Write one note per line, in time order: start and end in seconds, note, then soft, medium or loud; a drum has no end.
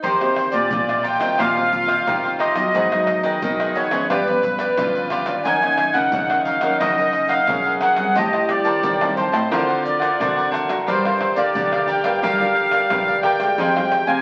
0.03 0.68 D#3 medium
0.03 0.47 D#3 medium
0.03 0.19 D#4 medium
0.03 0.19 G4 medium
0.03 0.68 G4 medium
0.03 0.56 C5 medium
0.03 0.19 C5 medium
0.03 0.19 D#5 medium
0.03 pandeiro medium
0.03 shaker medium
0.03 surdo medium
0.20 0.66 A#3 medium
0.20 0.66 C4 medium
0.20 0.67 G4 medium
0.20 0.35 G4 soft
0.20 0.35 C5 soft
0.20 0.35 D#5 soft
0.20 pandeiro soft
0.20 tamborim medium
0.20 shaker soft
0.36 muted cavaquinho stroke soft
0.36 pandeiro medium
0.36 tamborim medium
0.51 0.68 A#2 medium
0.51 0.86 G4 medium
0.51 0.86 C5 medium
0.51 1.05 D5 medium
0.51 pandeiro medium
0.51 shaker medium
0.71 1.36 A#2 medium
0.71 1.15 A#2 loud
0.71 1.03 A#3 medium
0.71 1.03 C4 medium
0.71 2.71 F4 medium
0.71 1.04 G4 medium
0.71 pandeiro medium
0.71 shaker medium
0.71 surdo loud
0.88 1.02 G4 soft
0.88 1.03 C5 soft
0.88 1.04 D#5 medium
0.88 pandeiro soft
0.88 tamborim medium
0.88 shaker soft
1.03 1.20 D#4 medium
1.03 1.20 G4 soft
1.03 1.19 C5 soft
1.03 1.18 D#5 soft
1.03 1.39 G5 medium
1.03 pandeiro medium
1.03 shaker medium
1.19 1.36 D#3 medium
1.19 1.49 A#3 medium
1.19 1.50 C4 medium
1.19 1.50 G4 medium
1.19 1.37 G4 medium
1.19 1.37 C5 medium
1.19 1.36 D#5 medium
1.19 pandeiro medium
1.19 tamborim medium
1.19 shaker medium
1.38 1.97 A#2 loud
1.38 2.03 D#3 medium
1.38 1.54 D#4 medium
1.38 1.55 G4 medium
1.38 1.55 C5 medium
1.38 1.54 D#5 medium
1.38 2.36 F5 loud
1.38 pandeiro medium
1.38 tamborim medium
1.38 shaker medium
1.38 surdo medium
1.55 2.01 A#3 medium
1.55 2.02 C4 medium
1.55 2.02 G4 medium
1.55 1.71 G4 soft
1.55 1.71 C5 soft
1.55 1.71 D#5 soft
1.55 pandeiro soft
1.55 shaker soft
1.72 muted cavaquinho stroke soft
1.72 pandeiro medium
1.72 shaker medium
1.72 surdo medium
1.87 2.05 G4 medium
1.87 2.04 C5 medium
1.87 2.04 D#5 medium
1.87 pandeiro medium
1.87 tamborim medium
1.87 shaker medium
2.06 2.71 A#2 medium
2.06 2.65 D#3 medium
2.06 2.39 A#3 soft
2.06 2.39 C4 medium
2.06 2.22 D#4 soft
2.06 2.23 G4 medium
2.06 2.39 G4 medium
2.06 2.23 C5 soft
2.06 2.23 D#5 medium
2.06 pandeiro medium
2.06 tamborim medium
2.06 shaker medium
2.06 surdo loud
2.24 2.39 G4 soft
2.24 2.39 C5 soft
2.24 2.39 D#5 soft
2.24 pandeiro soft
2.24 shaker soft
2.39 2.72 D#4 medium
2.39 2.73 G4 medium
2.39 2.73 C5 medium
2.39 3.22 D#5 loud
2.39 2.73 D#5 medium
2.39 pandeiro medium
2.39 tamborim medium
2.55 2.85 F#3 medium
2.55 2.85 B3 medium
2.55 2.85 D#4 medium
2.55 pandeiro medium
2.55 tamborim medium
2.55 shaker medium
2.74 3.38 G#2 medium
2.74 3.18 G#2 medium
2.74 4.06 D#4 medium
2.74 2.90 F#4 medium
2.74 2.90 G#4 medium
2.74 2.90 B4 medium
2.74 2.91 D#5 medium
2.74 pandeiro medium
2.74 shaker medium
2.74 surdo medium
2.92 3.37 F#3 medium
2.92 3.37 B3 medium
2.92 3.37 D#4 medium
2.92 3.06 G#4 soft
2.92 3.07 B4 soft
2.92 3.07 D#5 soft
2.92 pandeiro soft
2.92 tamborim medium
2.92 shaker soft
3.07 muted cavaquinho stroke soft
3.07 pandeiro medium
3.07 tamborim medium
3.23 3.39 D#3 medium
3.23 3.58 G#4 medium
3.23 3.57 B4 medium
3.23 3.57 D#5 medium
3.23 3.77 D#5 medium
3.23 pandeiro medium
3.23 shaker medium
3.42 4.07 D#3 medium
3.42 3.85 D#3 loud
3.42 3.87 F#3 medium
3.42 3.88 B3 medium
3.42 3.88 D#4 medium
3.42 pandeiro medium
3.42 shaker medium
3.42 surdo loud
3.59 3.75 G#4 soft
3.59 3.76 B4 soft
3.59 3.75 D#5 soft
3.59 pandeiro soft
3.59 tamborim medium
3.59 shaker soft
3.75 3.91 F#4 soft
3.75 3.92 G#4 medium
3.75 3.91 B4 medium
3.75 4.07 C#5 medium
3.75 3.91 D#5 medium
3.75 pandeiro medium
3.75 shaker medium
3.91 4.06 G#2 medium
3.91 4.20 F3 medium
3.91 4.20 B3 medium
3.91 4.21 C#4 medium
3.91 4.09 G#4 medium
3.91 4.08 B4 medium
3.91 4.08 D#5 medium
3.91 pandeiro medium
3.91 tamborim medium
3.91 shaker medium
4.09 4.74 G2 medium
4.09 4.68 G2 loud
4.09 4.26 F4 medium
4.09 4.48 G4 loud
4.09 4.26 G4 medium
4.09 5.08 B4 medium
4.09 4.26 B4 medium
4.09 4.27 D5 medium
4.09 pandeiro medium
4.09 tamborim medium
4.09 shaker medium
4.09 surdo medium
4.27 4.72 F3 medium
4.27 4.73 B3 medium
4.27 4.73 C#4 medium
4.27 4.43 G4 soft
4.27 4.43 B4 soft
4.27 4.43 D5 medium
4.27 pandeiro soft
4.27 shaker soft
4.43 muted cavaquinho stroke soft
4.43 pandeiro medium
4.43 shaker medium
4.43 surdo medium
4.59 4.77 G4 medium
4.59 4.76 B4 medium
4.59 4.76 D5 medium
4.59 pandeiro medium
4.59 tamborim medium
4.59 shaker medium
4.77 5.35 G2 medium
4.77 5.42 D3 soft
4.77 5.23 F3 medium
4.77 5.23 B3 medium
4.77 5.23 C#4 medium
4.77 5.48 F4 loud
4.77 4.93 F4 medium
4.77 4.94 G4 medium
4.77 4.94 B4 medium
4.77 4.94 D5 medium
4.77 pandeiro medium
4.77 tamborim medium
4.77 shaker medium
4.77 surdo medium
4.95 5.10 G4 soft
4.95 5.11 B4 soft
4.95 5.11 D5 soft
4.95 pandeiro soft
4.95 shaker soft
5.10 5.44 F4 medium
5.10 5.44 G4 medium
5.10 5.44 B4 medium
5.10 5.44 D5 medium
5.10 pandeiro medium
5.10 tamborim medium
5.10 shaker medium
5.26 5.56 D#3 medium
5.26 5.56 A#3 medium
5.26 5.56 C#4 medium
5.26 pandeiro medium
5.26 tamborim medium
5.26 shaker medium
5.45 5.88 F#2 medium
5.45 6.10 F#2 medium
5.45 7.50 D#4 loud
5.45 5.61 F#4 medium
5.45 5.61 A#4 medium
5.45 5.62 D#5 medium
5.45 5.62 F#5 medium
5.45 5.97 G#5 loud
5.45 pandeiro medium
5.45 shaker medium
5.45 surdo medium
5.63 6.08 D#3 medium
5.63 6.08 A#3 medium
5.63 6.08 C#4 medium
5.63 5.77 A#4 soft
5.63 5.78 D#5 soft
5.63 5.78 F#5 soft
5.63 pandeiro soft
5.63 tamborim medium
5.63 shaker soft
5.78 muted cavaquinho stroke soft
5.78 pandeiro medium
5.78 tamborim medium
5.78 shaker medium
5.92 6.09 C#3 medium
5.92 6.29 A#4 soft
5.92 6.28 D#5 medium
5.92 6.41 F#5 medium
5.92 6.28 F#5 medium
5.92 pandeiro medium
5.92 shaker medium
6.12 6.56 C#3 medium
6.12 6.78 C#3 medium
6.12 6.59 D#3 medium
6.12 6.59 A#3 medium
6.12 6.59 C#4 medium
6.12 pandeiro medium
6.12 shaker medium
6.12 surdo loud
6.30 6.45 A#4 soft
6.30 6.46 D#5 soft
6.30 6.46 F#5 soft
6.30 pandeiro soft
6.30 tamborim medium
6.30 shaker soft
6.44 6.62 F#4 soft
6.44 6.62 A#4 medium
6.44 6.61 D#5 medium
6.44 6.77 F5 medium
6.44 6.60 F#5 medium
6.44 pandeiro medium
6.44 shaker medium
6.61 6.77 F#2 medium
6.61 6.91 D#3 medium
6.61 6.92 A#3 medium
6.61 6.92 C#4 medium
6.61 6.79 A#4 medium
6.61 6.79 D#5 medium
6.61 6.78 F#5 medium
6.61 pandeiro medium
6.61 tamborim medium
6.61 shaker medium
6.79 7.45 F#2 medium
6.79 7.38 C#3 loud
6.79 6.96 F#4 medium
6.79 6.96 A#4 medium
6.79 7.32 D#5 loud
6.79 6.97 D#5 medium
6.79 6.97 F#5 medium
6.79 pandeiro medium
6.79 tamborim medium
6.79 shaker medium
6.79 surdo medium
6.98 7.43 D#3 medium
6.98 7.43 A#3 medium
6.98 7.44 C#4 medium
6.98 7.12 A#4 soft
6.98 7.12 D#5 soft
6.98 7.13 F#5 medium
6.98 pandeiro soft
6.98 shaker soft
7.13 muted cavaquinho stroke soft
7.13 pandeiro medium
7.13 shaker medium
7.29 7.47 A#4 medium
7.29 7.46 D#5 medium
7.29 7.78 F5 loud
7.29 7.46 F#5 medium
7.29 pandeiro medium
7.29 tamborim medium
7.29 shaker medium
7.47 8.06 F#2 medium
7.47 8.13 C#3 medium
7.47 7.80 D#3 medium
7.47 7.80 A#3 medium
7.47 7.81 C#4 medium
7.47 7.64 F#4 medium
7.47 8.18 G#4 loud
7.47 7.64 A#4 soft
7.47 7.64 D#5 medium
7.47 7.64 F#5 medium
7.47 pandeiro medium
7.47 tamborim medium
7.47 shaker medium
7.47 surdo loud
7.65 7.81 A#4 soft
7.65 7.81 D#5 soft
7.65 7.81 F#5 soft
7.65 pandeiro soft
7.65 shaker soft
7.81 8.15 F#4 medium
7.81 8.15 A#4 medium
7.81 8.15 D#5 medium
7.81 8.17 F#5 medium
7.81 8.15 F#5 medium
7.81 pandeiro medium
7.81 tamborim medium
7.81 shaker medium
7.96 8.27 G3 medium
7.96 8.27 C4 medium
7.96 8.28 D#4 medium
7.96 pandeiro medium
7.96 tamborim medium
7.96 shaker medium
8.15 8.59 A2 medium
8.15 8.81 A2 medium
8.15 8.32 G4 medium
8.15 9.26 G4 loud
8.15 8.32 C5 medium
8.15 8.51 D#5 medium
8.15 8.32 D#5 medium
8.15 8.32 A5 medium
8.15 pandeiro medium
8.15 shaker medium
8.15 surdo medium
8.33 8.49 C5 soft
8.33 8.49 D#5 soft
8.33 8.49 A5 soft
8.33 pandeiro soft
8.33 tamborim medium
8.33 shaker soft
8.49 8.82 G3 medium
8.49 8.82 C4 medium
8.49 8.82 D#4 medium
8.49 9.14 D5 medium
8.49 muted cavaquinho stroke soft
8.49 pandeiro medium
8.49 tamborim medium
8.49 shaker medium
8.65 8.80 D#3 loud
8.65 9.00 C5 medium
8.65 8.99 A5 medium
8.65 pandeiro medium
8.65 shaker medium
8.83 9.49 A2 medium
8.83 9.27 D#3 medium
8.83 pandeiro medium
8.83 shaker medium
8.83 surdo loud
9.01 9.47 G3 medium
9.01 9.47 C4 medium
9.01 9.47 D#4 medium
9.01 9.16 C5 soft
9.01 9.17 D#5 soft
9.01 9.17 A5 soft
9.01 pandeiro soft
9.01 tamborim medium
9.01 shaker soft
9.17 9.33 G4 soft
9.17 9.50 C5 medium
9.17 9.33 C5 medium
9.17 9.32 D#5 medium
9.17 9.31 A5 medium
9.17 pandeiro medium
9.17 shaker medium
9.32 9.48 A2 medium
9.32 9.50 C5 medium
9.32 9.50 D#5 medium
9.32 9.49 A5 medium
9.32 pandeiro medium
9.32 tamborim medium
9.32 shaker medium
9.51 10.09 D3 loud
9.51 10.17 D3 medium
9.51 9.96 C4 medium
9.51 9.67 D4 medium
9.51 10.21 F4 loud
9.51 9.68 A#4 medium
9.51 9.96 A#4 medium
9.51 9.84 C5 medium
9.51 9.68 C5 medium
9.51 9.67 F#5 medium
9.51 pandeiro medium
9.51 tamborim medium
9.51 shaker medium
9.51 surdo medium
9.69 9.83 A#4 soft
9.69 9.84 C5 soft
9.69 9.84 F#5 soft
9.69 pandeiro soft
9.69 shaker soft
9.84 10.50 D5 medium
9.84 muted cavaquinho stroke soft
9.84 pandeiro medium
9.84 shaker medium
10.00 10.18 A#4 medium
10.00 10.18 C5 medium
10.00 10.17 F#5 medium
10.00 pandeiro medium
10.00 tamborim medium
10.00 shaker medium
10.19 10.84 D3 soft
10.19 10.78 D3 medium
10.19 10.65 C4 medium
10.19 10.35 D4 soft
10.19 10.89 F#4 medium
10.19 10.66 F#4 medium
10.19 10.36 A#4 medium
10.19 10.66 A#4 medium
10.19 10.36 C5 soft
10.19 10.35 F#5 medium
10.19 pandeiro medium
10.19 tamborim medium
10.19 shaker medium
10.19 surdo loud
10.36 10.50 A#4 soft
10.36 10.51 C5 soft
10.36 10.52 F#5 soft
10.36 pandeiro soft
10.36 shaker soft
10.51 10.85 D4 medium
10.51 10.85 A#4 medium
10.51 10.86 C5 medium
10.51 10.86 F#5 medium
10.51 pandeiro medium
10.51 tamborim medium
10.51 shaker medium
10.68 11.05 D4 medium
10.68 11.05 F4 medium
10.68 11.06 A#4 medium
10.68 pandeiro medium
10.68 tamborim medium
10.68 shaker medium
10.87 11.31 G2 loud
10.87 11.52 G3 medium
10.87 11.03 G4 medium
10.87 13.59 G4 loud
10.87 11.03 A#4 medium
10.87 11.40 C5 medium
10.87 11.03 D5 medium
10.87 11.03 F5 medium
10.87 pandeiro medium
10.87 shaker medium
10.87 surdo medium
11.05 11.51 D4 medium
11.05 11.51 F4 medium
11.05 11.19 A#4 soft
11.05 11.51 A#4 medium
11.05 11.20 D5 soft
11.05 11.20 F5 soft
11.05 pandeiro soft
11.05 tamborim medium
11.05 shaker soft
11.20 muted cavaquinho stroke soft
11.20 pandeiro medium
11.20 tamborim medium
11.36 11.52 D3 medium
11.36 11.71 A#4 soft
11.36 11.90 D5 medium
11.36 11.70 D5 medium
11.36 11.71 F5 medium
11.36 pandeiro medium
11.36 shaker medium
11.55 11.99 D3 loud
11.55 12.20 D3 medium
11.55 12.01 D4 medium
11.55 12.02 F4 medium
11.55 12.02 A#4 medium
11.55 pandeiro medium
11.55 shaker medium
11.55 surdo loud
11.72 11.87 A#4 soft
11.72 11.88 D5 soft
11.72 11.88 F5 soft
11.72 pandeiro soft
11.72 tamborim medium
11.72 shaker soft
11.87 12.04 G4 soft
11.87 12.05 A#4 soft
11.87 12.03 D5 medium
11.87 12.04 F5 medium
11.87 12.20 G5 medium
11.87 pandeiro medium
11.87 shaker medium
12.04 12.20 G2 medium
12.04 12.34 D4 medium
12.04 12.34 F4 medium
12.04 12.35 A#4 medium
12.04 12.22 A#4 medium
12.04 12.21 D5 medium
12.04 12.21 F5 medium
12.04 pandeiro medium
12.04 tamborim medium
12.04 shaker medium
12.21 12.81 D3 loud
12.21 12.88 G3 medium
12.21 12.39 G4 medium
12.21 12.39 A#4 medium
12.21 12.38 D5 medium
12.21 13.20 F5 loud
12.21 12.39 F5 medium
12.21 pandeiro medium
12.21 tamborim medium
12.21 shaker medium
12.21 surdo medium
12.39 12.86 D4 medium
12.39 12.86 F4 medium
12.39 12.55 A#4 soft
12.39 12.87 A#4 medium
12.39 12.56 D5 medium
12.39 12.55 F5 soft
12.39 pandeiro soft
12.39 shaker soft
12.55 muted cavaquinho stroke soft
12.55 pandeiro medium
12.71 12.89 A#4 medium
12.71 12.88 D5 medium
12.71 12.89 F5 medium
12.71 pandeiro medium
12.71 tamborim medium
12.71 shaker medium
12.90 13.48 G2 medium
12.90 13.56 D3 medium
12.90 13.23 D4 medium
12.90 13.23 F4 medium
12.90 13.07 G4 soft
12.90 13.07 A#4 soft
12.90 13.23 A#4 medium
12.90 13.06 D5 soft
12.90 13.07 F5 medium
12.90 pandeiro medium
12.90 tamborim medium
12.90 shaker medium
12.90 surdo loud
13.08 13.23 A#4 soft
13.08 13.24 D5 medium
13.08 13.23 F5 soft
13.08 pandeiro soft
13.08 shaker soft
13.22 13.57 G4 medium
13.22 13.57 A#4 medium
13.22 13.58 D5 medium
13.22 13.58 F5 medium
13.22 14.11 G5 loud
13.22 pandeiro medium
13.22 tamborim medium
13.40 13.70 G#3 medium
13.40 13.70 D#4 medium
13.40 13.70 G4 medium
13.40 pandeiro medium
13.40 tamborim medium
13.40 shaker medium
13.58 14.02 F2 medium
13.58 14.22 F3 medium
13.58 13.75 D#4 medium
13.58 14.22 G4 medium
13.58 13.75 G#4 medium
13.58 13.75 C5 medium
13.58 13.75 F5 medium
13.58 pandeiro medium
13.58 shaker medium
13.58 surdo medium
13.76 14.22 G#3 medium
13.76 14.22 D#4 medium
13.76 14.22 G4 medium
13.76 13.91 G#4 soft
13.76 13.92 C5 soft
13.76 13.92 F5 soft
13.76 pandeiro soft
13.76 tamborim medium
13.76 shaker soft
13.92 muted cavaquinho stroke soft
13.92 pandeiro medium
13.92 tamborim medium
13.92 shaker medium
14.06 14.22 C3 medium
14.06 14.22 C5 medium
14.06 14.22 F5 medium
14.06 14.22 G#5 loud
14.06 pandeiro medium
14.06 shaker medium